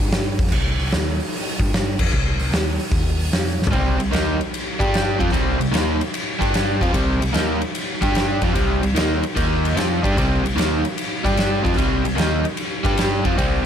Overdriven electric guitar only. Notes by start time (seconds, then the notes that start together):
3.71 C3 G3 C4
3.98 C3 G3
4.11 D#3 A#3 D#4
4.79 G3 D4 G4
5.19 F3 C4 F4
5.32 C3 G3 C4
5.59 C3 G3
5.72 D#3 A#3 D#4
6.39 G3 D4 G4
6.81 F3 C4 F4
6.92 C3 G3 C4
7.20 C3 G3
7.33 D#3 A#3 D#4
8.01 G3 D4 G4
8.42 F3 C4 F4
8.54 C3 G3 C4
8.82 C3 G3
8.95 D#3 A#3 D#4
9.35 D#3 A#3 D#4
9.76 F3 C4 F4
10.03 G3 D4 G4
10.17 C3 G3 C4
10.44 C3 G3
10.56 D#3 A#3 D#4
11.24 G3 D4 G4
11.63 F3 C4 F4
11.77 C3 G3 C4
12.05 C3 G3
12.15 D#3 A#3 D#4
12.84 G3 D4 G4
13.24 F3 C4 F4
13.37 C3 G3 C4